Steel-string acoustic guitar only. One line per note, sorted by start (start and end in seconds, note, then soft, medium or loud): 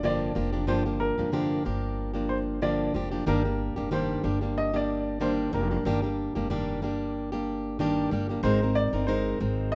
0.03 0.36 G2 medium
0.03 0.36 D3 medium
0.03 0.34 F3 medium
0.03 0.34 A#3 medium
0.03 0.35 D4 medium
0.03 0.35 G4 medium
0.35 0.53 F3 medium
0.35 0.52 A#3 medium
0.35 0.52 D4 medium
0.35 0.51 G4 medium
0.53 0.66 F3 soft
0.53 0.67 A#3 soft
0.53 0.67 D4 soft
0.53 0.67 G4 soft
0.67 0.85 G2 medium
0.67 0.86 D3 medium
0.67 0.86 F3 medium
0.67 0.86 A#3 medium
0.67 0.85 D4 medium
0.67 0.84 G4 medium
0.85 1.18 F3 soft
0.85 1.18 A#3 soft
0.85 1.18 D4 soft
0.85 1.17 G4 soft
1.18 1.31 F3 soft
1.18 1.32 A#3 soft
1.18 1.32 D4 soft
1.18 1.32 G4 soft
1.32 1.65 G2 medium
1.32 1.65 D3 medium
1.32 1.63 F3 medium
1.32 1.64 A#3 medium
1.32 1.65 D4 medium
1.32 1.65 G4 medium
1.64 2.14 F3 soft
1.64 2.14 A#3 soft
1.64 2.13 D4 soft
1.64 2.12 G4 medium
2.14 2.61 F3 soft
2.14 2.61 A#3 soft
2.14 2.62 D4 soft
2.14 2.61 G4 soft
2.62 2.94 G2 medium
2.62 2.95 D3 medium
2.62 2.93 F3 medium
2.62 2.94 A#3 medium
2.62 2.94 D4 medium
2.62 2.95 G4 medium
2.94 3.12 F3 medium
2.94 3.12 A#3 medium
2.94 3.11 D4 medium
2.94 3.10 G4 medium
3.12 3.26 F3 soft
3.12 3.26 A#3 soft
3.12 3.26 D4 soft
3.12 3.26 G4 soft
3.26 3.44 G2 medium
3.26 3.45 D#3 medium
3.26 3.45 G3 medium
3.26 3.44 A#3 medium
3.26 3.44 D4 medium
3.26 3.43 G4 medium
3.44 3.77 G3 soft
3.44 3.76 A#3 soft
3.44 3.76 D4 soft
3.44 3.75 G4 soft
3.76 3.90 G3 soft
3.76 3.91 A#3 soft
3.76 3.91 D4 soft
3.76 3.91 G4 soft
3.91 4.24 G2 medium
3.91 4.24 D#3 medium
3.91 4.22 G3 medium
3.91 4.23 A#3 medium
3.91 4.23 D4 medium
3.91 4.24 G4 medium
4.23 4.41 G3 soft
4.23 4.41 A#3 medium
4.23 4.41 D4 medium
4.23 4.40 G4 medium
4.41 4.74 G3 soft
4.41 4.73 A#3 soft
4.41 4.73 D4 soft
4.41 4.72 G4 soft
4.73 5.20 G3 soft
4.73 5.19 A#3 soft
4.73 5.20 D4 soft
4.73 5.20 G4 soft
5.20 5.53 G2 medium
5.20 5.53 D#3 medium
5.20 5.51 G3 medium
5.20 5.52 A#3 medium
5.20 5.53 D4 medium
5.20 5.53 G4 medium
5.52 5.70 G3 medium
5.52 5.71 A#3 medium
5.52 5.70 D4 medium
5.52 5.70 G4 medium
5.71 5.85 G3 soft
5.71 5.85 A#3 soft
5.71 5.85 D4 soft
5.71 5.85 G4 soft
5.85 6.03 G2 medium
5.85 6.04 D#3 medium
5.85 6.03 G3 medium
5.85 6.02 A#3 medium
5.85 6.02 D4 medium
5.85 6.01 G4 medium
6.02 6.36 G3 soft
6.02 6.35 D4 soft
6.02 6.34 G4 soft
6.35 6.49 G3 soft
6.35 6.49 A#3 soft
6.35 6.50 D4 soft
6.35 6.50 G4 medium
6.50 6.82 G2 medium
6.50 6.82 D#3 medium
6.50 6.81 G3 medium
6.50 6.81 A#3 medium
6.50 6.82 D4 medium
6.50 6.83 G4 medium
6.82 7.32 G3 medium
6.82 7.32 A#3 medium
6.82 7.32 D4 medium
6.82 7.31 G4 medium
7.32 7.79 G3 soft
7.32 7.79 A#3 soft
7.32 7.79 D4 medium
7.32 7.79 G4 medium
7.79 8.11 G2 medium
7.79 8.12 D#3 medium
7.79 8.10 G3 medium
7.79 8.11 A#3 medium
7.79 8.11 D4 medium
7.79 8.12 G4 medium
8.11 8.29 G3 medium
8.11 8.30 A#3 medium
8.11 8.29 D4 medium
8.11 8.28 G4 medium
8.29 8.44 G3 soft
8.29 8.44 A#3 soft
8.29 8.44 D4 soft
8.29 8.44 G4 soft
8.44 8.62 G#3 medium
8.44 8.62 C4 medium
8.44 8.62 D#4 medium
8.44 8.61 A#4 medium
8.62 8.94 C4 soft
8.62 8.93 D#4 soft
8.62 8.92 A#4 medium
8.93 9.07 C4 soft
8.93 9.07 D#4 soft
8.93 9.08 A#4 medium
9.08 9.39 G#3 medium
9.08 9.40 C4 medium
9.08 9.40 D#4 medium
9.08 9.41 A#4 medium
9.40 9.75 G#3 soft
9.40 9.75 C4 medium
9.40 9.75 D#4 medium
9.40 9.75 A#4 medium